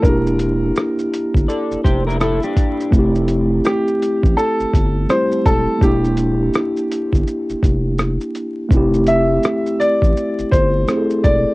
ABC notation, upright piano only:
X:1
M:4/4
L:1/8
Q:"Swing 16ths" 1/4=83
K:F
V:1 name="Upright piano"
B4 z4 | z2 G2 A2 c A | G4 z4 | z e2 d2 c2 d |]